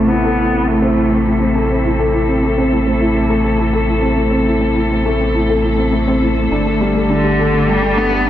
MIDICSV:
0, 0, Header, 1, 5, 480
1, 0, Start_track
1, 0, Key_signature, 0, "minor"
1, 0, Tempo, 582524
1, 1527, Time_signature, 4, 2, 24, 8
1, 6838, End_track
2, 0, Start_track
2, 0, Title_t, "String quartet"
2, 0, Program_c, 0, 48
2, 0, Note_on_c, 0, 48, 70
2, 0, Note_on_c, 0, 57, 67
2, 0, Note_on_c, 0, 64, 54
2, 0, Note_on_c, 0, 69, 68
2, 5364, Note_on_c, 0, 50, 60
2, 5366, Note_off_c, 0, 48, 0
2, 6038, Note_off_c, 0, 64, 0
2, 6224, Note_on_c, 0, 67, 69
2, 6838, Note_off_c, 0, 50, 0
2, 6838, Note_off_c, 0, 57, 0
2, 6838, Note_off_c, 0, 67, 0
2, 6838, Note_off_c, 0, 69, 0
2, 6838, End_track
3, 0, Start_track
3, 0, Title_t, "Felt piano"
3, 0, Program_c, 1, 0
3, 0, Control_c, 1, 64, 127
3, 0, Note_on_c, 1, 57, 76
3, 0, Note_on_c, 1, 60, 67
3, 0, Note_on_c, 1, 64, 68
3, 0, Note_on_c, 1, 69, 89
3, 81, Note_off_c, 1, 64, 0
3, 81, Note_on_c, 1, 64, 66
3, 198, Note_off_c, 1, 64, 0
3, 205, Note_off_c, 1, 69, 0
3, 205, Note_on_c, 1, 69, 79
3, 320, Note_off_c, 1, 69, 0
3, 323, Note_on_c, 1, 64, 62
3, 439, Note_off_c, 1, 60, 0
3, 439, Note_off_c, 1, 64, 0
3, 439, Note_on_c, 1, 60, 60
3, 557, Note_off_c, 1, 60, 0
3, 561, Note_off_c, 1, 57, 0
3, 561, Note_on_c, 1, 57, 69
3, 676, Note_on_c, 1, 60, 88
3, 678, Note_off_c, 1, 57, 0
3, 796, Note_off_c, 1, 60, 0
3, 801, Note_on_c, 1, 64, 62
3, 918, Note_off_c, 1, 64, 0
3, 921, Note_on_c, 1, 60, 57
3, 1038, Note_off_c, 1, 60, 0
3, 1039, Note_on_c, 1, 64, 62
3, 1155, Note_on_c, 1, 60, 60
3, 1157, Note_off_c, 1, 64, 0
3, 1275, Note_off_c, 1, 60, 0
3, 1279, Note_on_c, 1, 57, 76
3, 1397, Note_off_c, 1, 57, 0
3, 1400, Note_on_c, 1, 60, 64
3, 1517, Note_off_c, 1, 60, 0
3, 1526, Note_on_c, 1, 64, 71
3, 1638, Note_on_c, 1, 69, 78
3, 1640, Note_off_c, 1, 64, 0
3, 1757, Note_off_c, 1, 69, 0
3, 1764, Note_on_c, 1, 64, 61
3, 1879, Note_off_c, 1, 64, 0
3, 1882, Note_on_c, 1, 60, 62
3, 1998, Note_off_c, 1, 60, 0
3, 2003, Note_on_c, 1, 57, 68
3, 2119, Note_off_c, 1, 57, 0
3, 2126, Note_on_c, 1, 60, 78
3, 2240, Note_off_c, 1, 60, 0
3, 2242, Note_on_c, 1, 64, 59
3, 2359, Note_off_c, 1, 64, 0
3, 2360, Note_on_c, 1, 60, 59
3, 2475, Note_on_c, 1, 64, 71
3, 2478, Note_off_c, 1, 60, 0
3, 2595, Note_off_c, 1, 64, 0
3, 2597, Note_on_c, 1, 60, 61
3, 2716, Note_off_c, 1, 60, 0
3, 2716, Note_on_c, 1, 57, 82
3, 2836, Note_off_c, 1, 57, 0
3, 2837, Note_on_c, 1, 60, 56
3, 2955, Note_on_c, 1, 64, 59
3, 2956, Note_off_c, 1, 60, 0
3, 3075, Note_off_c, 1, 64, 0
3, 3075, Note_on_c, 1, 69, 83
3, 3195, Note_off_c, 1, 69, 0
3, 3198, Note_on_c, 1, 64, 57
3, 3314, Note_on_c, 1, 60, 63
3, 3317, Note_off_c, 1, 64, 0
3, 3434, Note_off_c, 1, 60, 0
3, 3435, Note_on_c, 1, 57, 70
3, 3552, Note_on_c, 1, 60, 78
3, 3555, Note_off_c, 1, 57, 0
3, 3674, Note_off_c, 1, 60, 0
3, 3680, Note_on_c, 1, 64, 59
3, 3796, Note_on_c, 1, 60, 64
3, 3797, Note_off_c, 1, 64, 0
3, 3915, Note_off_c, 1, 60, 0
3, 3919, Note_on_c, 1, 64, 66
3, 4037, Note_off_c, 1, 64, 0
3, 4045, Note_on_c, 1, 60, 60
3, 4160, Note_off_c, 1, 60, 0
3, 4164, Note_on_c, 1, 57, 83
3, 4280, Note_off_c, 1, 57, 0
3, 4288, Note_on_c, 1, 60, 59
3, 4401, Note_off_c, 1, 60, 0
3, 4404, Note_on_c, 1, 64, 67
3, 4519, Note_off_c, 1, 64, 0
3, 4524, Note_on_c, 1, 69, 84
3, 4639, Note_off_c, 1, 69, 0
3, 4647, Note_on_c, 1, 64, 63
3, 4761, Note_off_c, 1, 64, 0
3, 4761, Note_on_c, 1, 60, 59
3, 4878, Note_off_c, 1, 60, 0
3, 4882, Note_on_c, 1, 57, 64
3, 4998, Note_off_c, 1, 57, 0
3, 5006, Note_on_c, 1, 60, 85
3, 5120, Note_off_c, 1, 60, 0
3, 5125, Note_on_c, 1, 64, 61
3, 5240, Note_off_c, 1, 64, 0
3, 5248, Note_on_c, 1, 60, 59
3, 5362, Note_off_c, 1, 60, 0
3, 5370, Note_on_c, 1, 62, 66
3, 5377, Control_c, 1, 64, 0
3, 5482, Note_off_c, 1, 62, 0
3, 5486, Note_on_c, 1, 57, 62
3, 5502, Control_c, 1, 64, 127
3, 5601, Note_off_c, 1, 57, 0
3, 5609, Note_on_c, 1, 55, 77
3, 5722, Note_off_c, 1, 55, 0
3, 5724, Note_on_c, 1, 57, 64
3, 5840, Note_off_c, 1, 57, 0
3, 5847, Note_on_c, 1, 62, 61
3, 5961, Note_off_c, 1, 62, 0
3, 5966, Note_on_c, 1, 67, 82
3, 6080, Note_off_c, 1, 67, 0
3, 6091, Note_on_c, 1, 69, 83
3, 6157, Note_off_c, 1, 69, 0
3, 6207, Note_on_c, 1, 57, 55
3, 6321, Note_off_c, 1, 57, 0
3, 6321, Note_on_c, 1, 55, 67
3, 6438, Note_off_c, 1, 55, 0
3, 6447, Note_on_c, 1, 57, 85
3, 6561, Note_off_c, 1, 57, 0
3, 6566, Note_on_c, 1, 62, 62
3, 6680, Note_off_c, 1, 62, 0
3, 6691, Note_on_c, 1, 57, 57
3, 6803, Note_off_c, 1, 57, 0
3, 6808, Note_on_c, 1, 62, 65
3, 6838, Note_off_c, 1, 62, 0
3, 6838, End_track
4, 0, Start_track
4, 0, Title_t, "Cello"
4, 0, Program_c, 2, 42
4, 0, Note_on_c, 2, 57, 91
4, 72, Note_on_c, 2, 59, 94
4, 84, Note_off_c, 2, 57, 0
4, 558, Note_on_c, 2, 57, 88
4, 571, Note_off_c, 2, 59, 0
4, 1282, Note_off_c, 2, 57, 0
4, 5850, Note_on_c, 2, 50, 79
4, 6333, Note_on_c, 2, 55, 91
4, 6345, Note_off_c, 2, 50, 0
4, 6574, Note_on_c, 2, 59, 95
4, 6587, Note_off_c, 2, 55, 0
4, 6832, Note_off_c, 2, 59, 0
4, 6838, End_track
5, 0, Start_track
5, 0, Title_t, "Analog synth bass"
5, 0, Program_c, 3, 38
5, 0, Note_on_c, 3, 33, 79
5, 5341, Note_off_c, 3, 33, 0
5, 5362, Note_on_c, 3, 31, 82
5, 6838, Note_off_c, 3, 31, 0
5, 6838, End_track
0, 0, End_of_file